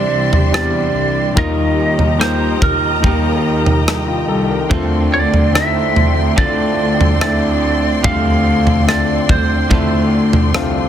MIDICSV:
0, 0, Header, 1, 7, 480
1, 0, Start_track
1, 0, Tempo, 833333
1, 792, Time_signature, 4, 2, 24, 8
1, 6270, End_track
2, 0, Start_track
2, 0, Title_t, "String section"
2, 0, Program_c, 0, 48
2, 0, Note_on_c, 0, 67, 67
2, 0, Note_on_c, 0, 74, 61
2, 0, Note_on_c, 0, 76, 62
2, 0, Note_on_c, 0, 84, 67
2, 776, Note_off_c, 0, 74, 0
2, 777, Note_off_c, 0, 76, 0
2, 777, Note_off_c, 0, 84, 0
2, 785, Note_on_c, 0, 79, 63
2, 785, Note_on_c, 0, 82, 75
2, 786, Note_on_c, 0, 75, 65
2, 2689, Note_off_c, 0, 82, 0
2, 2690, Note_off_c, 0, 75, 0
2, 2694, Note_off_c, 0, 67, 0
2, 2713, Note_on_c, 0, 69, 64
2, 2713, Note_on_c, 0, 84, 74
2, 2718, Note_on_c, 0, 74, 60
2, 6270, Note_off_c, 0, 69, 0
2, 6270, Note_off_c, 0, 74, 0
2, 6270, Note_off_c, 0, 79, 0
2, 6270, Note_off_c, 0, 84, 0
2, 6270, End_track
3, 0, Start_track
3, 0, Title_t, "Lead electric guitar"
3, 0, Program_c, 1, 29
3, 0, Note_on_c, 1, 74, 79
3, 305, Note_off_c, 1, 74, 0
3, 312, Note_on_c, 1, 74, 73
3, 794, Note_off_c, 1, 74, 0
3, 796, Note_on_c, 1, 75, 85
3, 1251, Note_off_c, 1, 75, 0
3, 1272, Note_on_c, 1, 72, 70
3, 1512, Note_off_c, 1, 72, 0
3, 1514, Note_on_c, 1, 70, 59
3, 1970, Note_off_c, 1, 70, 0
3, 2958, Note_on_c, 1, 74, 68
3, 3196, Note_off_c, 1, 74, 0
3, 3198, Note_on_c, 1, 76, 78
3, 3652, Note_off_c, 1, 76, 0
3, 3677, Note_on_c, 1, 74, 74
3, 4149, Note_off_c, 1, 74, 0
3, 4156, Note_on_c, 1, 74, 77
3, 4611, Note_off_c, 1, 74, 0
3, 4636, Note_on_c, 1, 77, 97
3, 5091, Note_off_c, 1, 77, 0
3, 5118, Note_on_c, 1, 74, 84
3, 5359, Note_on_c, 1, 72, 58
3, 5362, Note_off_c, 1, 74, 0
3, 5812, Note_off_c, 1, 72, 0
3, 6270, End_track
4, 0, Start_track
4, 0, Title_t, "Grand piano"
4, 0, Program_c, 2, 0
4, 0, Control_c, 2, 64, 127
4, 0, Note_on_c, 2, 48, 64
4, 0, Note_on_c, 2, 55, 54
4, 0, Note_on_c, 2, 60, 50
4, 0, Note_on_c, 2, 62, 54
4, 0, Note_on_c, 2, 64, 73
4, 0, Note_on_c, 2, 67, 67
4, 282, Note_off_c, 2, 55, 0
4, 283, Note_off_c, 2, 60, 0
4, 286, Note_off_c, 2, 62, 0
4, 287, Note_off_c, 2, 67, 0
4, 302, Note_on_c, 2, 55, 64
4, 307, Note_on_c, 2, 60, 57
4, 311, Note_on_c, 2, 62, 60
4, 312, Note_on_c, 2, 67, 73
4, 763, Note_off_c, 2, 55, 0
4, 766, Note_off_c, 2, 60, 0
4, 767, Note_off_c, 2, 62, 0
4, 768, Note_off_c, 2, 67, 0
4, 777, Note_on_c, 2, 55, 53
4, 780, Note_on_c, 2, 58, 51
4, 782, Note_on_c, 2, 51, 52
4, 783, Note_on_c, 2, 63, 54
4, 788, Note_on_c, 2, 65, 62
4, 799, Control_c, 2, 64, 0
4, 800, Note_off_c, 2, 64, 0
4, 802, Note_off_c, 2, 48, 0
4, 906, Control_c, 2, 64, 127
4, 1240, Note_off_c, 2, 55, 0
4, 1242, Note_off_c, 2, 58, 0
4, 1243, Note_off_c, 2, 63, 0
4, 1246, Note_off_c, 2, 65, 0
4, 1259, Note_on_c, 2, 55, 68
4, 1262, Note_on_c, 2, 58, 60
4, 1267, Note_on_c, 2, 63, 61
4, 1272, Note_on_c, 2, 67, 69
4, 1484, Note_off_c, 2, 51, 0
4, 1721, Note_off_c, 2, 55, 0
4, 1723, Note_off_c, 2, 58, 0
4, 1725, Note_off_c, 2, 63, 0
4, 1728, Note_off_c, 2, 67, 0
4, 1740, Note_on_c, 2, 55, 62
4, 1745, Note_on_c, 2, 58, 55
4, 1749, Note_on_c, 2, 63, 54
4, 1751, Note_on_c, 2, 67, 71
4, 2202, Note_off_c, 2, 55, 0
4, 2205, Note_off_c, 2, 58, 0
4, 2207, Note_off_c, 2, 63, 0
4, 2207, Note_off_c, 2, 67, 0
4, 2350, Note_on_c, 2, 65, 52
4, 2465, Note_off_c, 2, 65, 0
4, 2467, Note_on_c, 2, 69, 58
4, 2583, Note_off_c, 2, 69, 0
4, 2595, Note_on_c, 2, 70, 60
4, 2707, Note_on_c, 2, 57, 71
4, 2711, Note_on_c, 2, 60, 68
4, 2713, Note_on_c, 2, 50, 58
4, 2713, Note_on_c, 2, 62, 63
4, 2716, Note_on_c, 2, 65, 82
4, 2718, Control_c, 2, 64, 0
4, 2819, Control_c, 2, 64, 127
4, 2822, Note_off_c, 2, 70, 0
4, 3166, Note_off_c, 2, 57, 0
4, 3167, Note_off_c, 2, 60, 0
4, 3169, Note_off_c, 2, 62, 0
4, 3170, Note_off_c, 2, 65, 0
4, 3185, Note_on_c, 2, 57, 66
4, 3189, Note_on_c, 2, 60, 65
4, 3194, Note_on_c, 2, 62, 59
4, 3196, Note_on_c, 2, 63, 59
4, 3231, Note_off_c, 2, 63, 0
4, 3235, Note_on_c, 2, 64, 72
4, 3409, Note_off_c, 2, 50, 0
4, 3645, Note_off_c, 2, 57, 0
4, 3646, Note_off_c, 2, 60, 0
4, 3649, Note_off_c, 2, 62, 0
4, 3667, Note_on_c, 2, 57, 60
4, 3669, Note_off_c, 2, 64, 0
4, 3670, Note_on_c, 2, 60, 60
4, 3675, Note_on_c, 2, 62, 59
4, 3678, Note_on_c, 2, 64, 51
4, 3712, Note_off_c, 2, 64, 0
4, 3717, Note_on_c, 2, 65, 61
4, 4125, Note_off_c, 2, 57, 0
4, 4127, Note_off_c, 2, 60, 0
4, 4129, Note_off_c, 2, 62, 0
4, 4151, Note_off_c, 2, 65, 0
4, 4152, Note_on_c, 2, 57, 68
4, 4155, Note_on_c, 2, 60, 62
4, 4161, Note_on_c, 2, 62, 58
4, 4166, Note_on_c, 2, 64, 74
4, 4608, Note_off_c, 2, 57, 0
4, 4610, Note_off_c, 2, 60, 0
4, 4612, Note_off_c, 2, 62, 0
4, 4615, Note_off_c, 2, 64, 0
4, 4629, Note_on_c, 2, 57, 59
4, 4633, Note_on_c, 2, 60, 47
4, 4636, Note_on_c, 2, 50, 54
4, 4636, Note_on_c, 2, 62, 56
4, 4641, Note_on_c, 2, 67, 66
4, 5086, Note_off_c, 2, 57, 0
4, 5089, Note_off_c, 2, 60, 0
4, 5090, Note_off_c, 2, 62, 0
4, 5093, Note_off_c, 2, 67, 0
4, 5109, Note_on_c, 2, 57, 66
4, 5111, Note_on_c, 2, 60, 63
4, 5116, Note_on_c, 2, 62, 57
4, 5117, Note_on_c, 2, 65, 74
4, 5331, Note_off_c, 2, 50, 0
4, 5566, Note_off_c, 2, 57, 0
4, 5567, Note_off_c, 2, 60, 0
4, 5570, Note_off_c, 2, 62, 0
4, 5570, Note_off_c, 2, 65, 0
4, 5591, Note_on_c, 2, 57, 57
4, 5595, Note_on_c, 2, 60, 50
4, 5599, Note_on_c, 2, 62, 55
4, 5601, Note_on_c, 2, 64, 72
4, 6048, Note_off_c, 2, 57, 0
4, 6050, Note_off_c, 2, 60, 0
4, 6051, Note_off_c, 2, 62, 0
4, 6052, Note_off_c, 2, 64, 0
4, 6072, Note_on_c, 2, 57, 77
4, 6075, Note_on_c, 2, 60, 71
4, 6079, Note_on_c, 2, 62, 71
4, 6081, Note_on_c, 2, 65, 90
4, 6270, Note_off_c, 2, 57, 0
4, 6270, Note_off_c, 2, 60, 0
4, 6270, Note_off_c, 2, 62, 0
4, 6270, Note_off_c, 2, 65, 0
4, 6270, End_track
5, 0, Start_track
5, 0, Title_t, "Clean electric guitar"
5, 0, Program_c, 3, 27
5, 0, Note_on_c, 3, 48, 70
5, 0, Note_on_c, 3, 52, 71
5, 0, Note_on_c, 3, 55, 69
5, 0, Note_on_c, 3, 62, 74
5, 0, Note_on_c, 3, 64, 68
5, 0, Note_on_c, 3, 72, 69
5, 784, Note_off_c, 3, 52, 0
5, 786, Note_on_c, 3, 51, 71
5, 787, Note_off_c, 3, 48, 0
5, 787, Note_off_c, 3, 55, 0
5, 789, Note_off_c, 3, 62, 0
5, 789, Note_on_c, 3, 55, 77
5, 791, Note_off_c, 3, 64, 0
5, 791, Note_on_c, 3, 63, 68
5, 794, Note_off_c, 3, 72, 0
5, 794, Note_on_c, 3, 65, 67
5, 797, Note_on_c, 3, 70, 78
5, 1260, Note_off_c, 3, 55, 0
5, 1265, Note_off_c, 3, 63, 0
5, 1267, Note_on_c, 3, 55, 50
5, 1269, Note_off_c, 3, 51, 0
5, 1272, Note_on_c, 3, 63, 46
5, 1274, Note_off_c, 3, 70, 0
5, 1275, Note_off_c, 3, 65, 0
5, 1278, Note_on_c, 3, 65, 45
5, 1282, Note_on_c, 3, 70, 50
5, 1744, Note_off_c, 3, 55, 0
5, 1744, Note_on_c, 3, 51, 67
5, 1751, Note_on_c, 3, 55, 75
5, 1752, Note_off_c, 3, 63, 0
5, 1757, Note_off_c, 3, 70, 0
5, 1758, Note_on_c, 3, 63, 73
5, 1761, Note_off_c, 3, 65, 0
5, 1764, Note_on_c, 3, 65, 68
5, 1769, Note_on_c, 3, 70, 76
5, 2702, Note_off_c, 3, 51, 0
5, 2705, Note_on_c, 3, 50, 75
5, 2711, Note_off_c, 3, 55, 0
5, 2713, Note_on_c, 3, 57, 84
5, 2715, Note_off_c, 3, 63, 0
5, 2720, Note_off_c, 3, 70, 0
5, 2720, Note_on_c, 3, 60, 90
5, 2723, Note_off_c, 3, 65, 0
5, 2725, Note_on_c, 3, 65, 81
5, 2731, Note_on_c, 3, 69, 91
5, 3663, Note_off_c, 3, 50, 0
5, 3665, Note_on_c, 3, 50, 71
5, 3667, Note_off_c, 3, 57, 0
5, 3674, Note_on_c, 3, 57, 76
5, 3676, Note_off_c, 3, 60, 0
5, 3678, Note_off_c, 3, 65, 0
5, 3679, Note_on_c, 3, 60, 83
5, 3681, Note_off_c, 3, 69, 0
5, 3685, Note_on_c, 3, 65, 77
5, 3691, Note_on_c, 3, 69, 78
5, 4623, Note_off_c, 3, 50, 0
5, 4626, Note_off_c, 3, 57, 0
5, 4626, Note_on_c, 3, 50, 73
5, 4633, Note_on_c, 3, 57, 79
5, 4638, Note_off_c, 3, 60, 0
5, 4638, Note_off_c, 3, 65, 0
5, 4640, Note_on_c, 3, 60, 75
5, 4641, Note_off_c, 3, 69, 0
5, 4646, Note_on_c, 3, 65, 75
5, 4652, Note_on_c, 3, 69, 79
5, 5582, Note_off_c, 3, 50, 0
5, 5585, Note_off_c, 3, 57, 0
5, 5585, Note_on_c, 3, 50, 72
5, 5592, Note_on_c, 3, 57, 81
5, 5595, Note_off_c, 3, 60, 0
5, 5597, Note_on_c, 3, 60, 76
5, 5599, Note_off_c, 3, 65, 0
5, 5602, Note_off_c, 3, 69, 0
5, 5605, Note_on_c, 3, 65, 79
5, 5610, Note_on_c, 3, 69, 78
5, 6270, Note_off_c, 3, 50, 0
5, 6270, Note_off_c, 3, 57, 0
5, 6270, Note_off_c, 3, 60, 0
5, 6270, Note_off_c, 3, 65, 0
5, 6270, Note_off_c, 3, 69, 0
5, 6270, End_track
6, 0, Start_track
6, 0, Title_t, "Cello section"
6, 0, Program_c, 4, 48
6, 71, Note_on_c, 4, 36, 76
6, 295, Note_off_c, 4, 36, 0
6, 311, Note_on_c, 4, 40, 79
6, 535, Note_off_c, 4, 40, 0
6, 546, Note_on_c, 4, 36, 70
6, 772, Note_off_c, 4, 36, 0
6, 790, Note_on_c, 4, 39, 84
6, 1488, Note_off_c, 4, 39, 0
6, 1506, Note_on_c, 4, 39, 65
6, 1732, Note_off_c, 4, 39, 0
6, 1748, Note_on_c, 4, 39, 88
6, 2207, Note_off_c, 4, 39, 0
6, 2230, Note_on_c, 4, 36, 74
6, 2454, Note_off_c, 4, 36, 0
6, 2467, Note_on_c, 4, 36, 80
6, 2692, Note_off_c, 4, 36, 0
6, 2712, Note_on_c, 4, 38, 91
6, 3409, Note_off_c, 4, 38, 0
6, 3428, Note_on_c, 4, 38, 67
6, 3887, Note_off_c, 4, 38, 0
6, 3907, Note_on_c, 4, 38, 93
6, 4132, Note_off_c, 4, 38, 0
6, 4149, Note_on_c, 4, 38, 96
6, 4607, Note_off_c, 4, 38, 0
6, 4632, Note_on_c, 4, 38, 98
6, 5329, Note_off_c, 4, 38, 0
6, 5352, Note_on_c, 4, 38, 70
6, 5575, Note_off_c, 4, 38, 0
6, 5592, Note_on_c, 4, 38, 83
6, 6049, Note_off_c, 4, 38, 0
6, 6071, Note_on_c, 4, 36, 76
6, 6270, Note_off_c, 4, 36, 0
6, 6270, End_track
7, 0, Start_track
7, 0, Title_t, "Drums"
7, 189, Note_on_c, 9, 43, 59
7, 247, Note_off_c, 9, 43, 0
7, 312, Note_on_c, 9, 37, 103
7, 370, Note_off_c, 9, 37, 0
7, 789, Note_on_c, 9, 36, 98
7, 789, Note_on_c, 9, 43, 87
7, 846, Note_off_c, 9, 43, 0
7, 847, Note_off_c, 9, 36, 0
7, 1146, Note_on_c, 9, 43, 52
7, 1203, Note_off_c, 9, 43, 0
7, 1274, Note_on_c, 9, 37, 88
7, 1331, Note_off_c, 9, 37, 0
7, 1509, Note_on_c, 9, 36, 77
7, 1510, Note_on_c, 9, 43, 51
7, 1566, Note_off_c, 9, 36, 0
7, 1568, Note_off_c, 9, 43, 0
7, 1750, Note_on_c, 9, 36, 76
7, 1751, Note_on_c, 9, 43, 57
7, 1808, Note_off_c, 9, 36, 0
7, 1808, Note_off_c, 9, 43, 0
7, 2111, Note_on_c, 9, 43, 53
7, 2168, Note_off_c, 9, 43, 0
7, 2235, Note_on_c, 9, 37, 94
7, 2292, Note_off_c, 9, 37, 0
7, 2712, Note_on_c, 9, 36, 88
7, 2713, Note_on_c, 9, 43, 99
7, 2769, Note_off_c, 9, 36, 0
7, 2771, Note_off_c, 9, 43, 0
7, 3074, Note_on_c, 9, 43, 50
7, 3131, Note_off_c, 9, 43, 0
7, 3199, Note_on_c, 9, 37, 92
7, 3257, Note_off_c, 9, 37, 0
7, 3435, Note_on_c, 9, 43, 56
7, 3493, Note_off_c, 9, 43, 0
7, 3674, Note_on_c, 9, 36, 75
7, 3731, Note_off_c, 9, 36, 0
7, 4035, Note_on_c, 9, 43, 59
7, 4093, Note_off_c, 9, 43, 0
7, 4155, Note_on_c, 9, 37, 103
7, 4213, Note_off_c, 9, 37, 0
7, 4633, Note_on_c, 9, 43, 100
7, 4634, Note_on_c, 9, 36, 93
7, 4690, Note_off_c, 9, 43, 0
7, 4691, Note_off_c, 9, 36, 0
7, 4993, Note_on_c, 9, 43, 57
7, 5050, Note_off_c, 9, 43, 0
7, 5118, Note_on_c, 9, 37, 84
7, 5176, Note_off_c, 9, 37, 0
7, 5353, Note_on_c, 9, 36, 70
7, 5354, Note_on_c, 9, 43, 60
7, 5410, Note_off_c, 9, 36, 0
7, 5412, Note_off_c, 9, 43, 0
7, 5590, Note_on_c, 9, 43, 58
7, 5593, Note_on_c, 9, 36, 82
7, 5648, Note_off_c, 9, 43, 0
7, 5650, Note_off_c, 9, 36, 0
7, 5952, Note_on_c, 9, 43, 61
7, 6009, Note_off_c, 9, 43, 0
7, 6074, Note_on_c, 9, 37, 104
7, 6131, Note_off_c, 9, 37, 0
7, 6270, End_track
0, 0, End_of_file